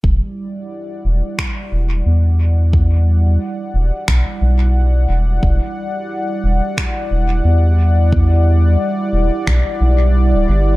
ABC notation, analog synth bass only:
X:1
M:4/4
L:1/16
Q:"Swing 16ths" 1/4=89
K:Em
V:1 name="Analog synth bass" clef=bass
E,,, z4 z E,,, z3 E,,,2 E,,4- | E,,4 z2 E,,, z B,,, z B,,,4 E,,,2 | E,,, z4 z E,,, z3 E,,,2 E,,4- | E,,4 z2 E,,, z B,,, z B,,,3 D,,, G,,,2 |]